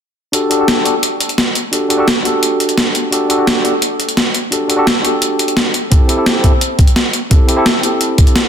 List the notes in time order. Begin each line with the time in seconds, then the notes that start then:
0.32 D4 F#4 G4 A4, closed hi-hat
0.49 D4 F#4 G4 A4, closed hi-hat
0.58 D4 F#4 G4 A4
0.68 snare, closed hi-hat
0.84 D4 F#4 G4 A4, closed hi-hat
1.03 closed hi-hat
1.20 closed hi-hat
1.29 closed hi-hat
1.38 snare, closed hi-hat
1.55 closed hi-hat
1.71 D4 F#4 G4 A4, closed hi-hat
1.89 D4 F#4 G4 A4, closed hi-hat
1.98 D4 F#4 G4 A4
2.08 snare, closed hi-hat
2.22 D4 F#4 G4, closed hi-hat
2.27 A4
2.43 closed hi-hat
2.60 closed hi-hat
2.69 closed hi-hat
2.78 snare, closed hi-hat
2.95 closed hi-hat
3.11 D4 F#4 G4 A4, closed hi-hat
3.28 D4 F#4 G4 A4, closed hi-hat
3.37 D4 F#4 G4 A4
3.47 snare, closed hi-hat
3.64 D4 F#4 G4 A4, closed hi-hat
3.82 closed hi-hat
4.00 closed hi-hat
4.09 closed hi-hat
4.17 snare, closed hi-hat
4.34 closed hi-hat
4.51 D4 F#4 G4 A4, closed hi-hat
4.68 D4 F#4 G4 A4, closed hi-hat
4.76 D4 F#4 G4 A4
4.87 snare, closed hi-hat
5.02 D4 F#4 G4, closed hi-hat
5.07 A4
5.22 closed hi-hat
5.39 closed hi-hat
5.48 closed hi-hat
5.57 snare, closed hi-hat
5.74 closed hi-hat
5.90 C4 E4 G4 A4, kick, closed hi-hat
6.07 C4 E4 G4 A4, closed hi-hat
6.16 C4 E4 G4 A4
6.26 snare, closed hi-hat
6.42 C4 E4 G4 A4, kick, closed hi-hat
6.61 closed hi-hat
6.79 kick, closed hi-hat
6.87 closed hi-hat
6.96 snare, closed hi-hat
7.13 closed hi-hat
7.30 C4 E4 G4 A4, kick, closed hi-hat
7.47 C4 E4 G4 A4, closed hi-hat
7.56 C4 E4 G4 A4
7.66 snare, closed hi-hat
7.81 C4 E4 G4, closed hi-hat
7.86 A4
8.01 closed hi-hat
8.18 kick, closed hi-hat
8.27 closed hi-hat
8.36 snare, closed hi-hat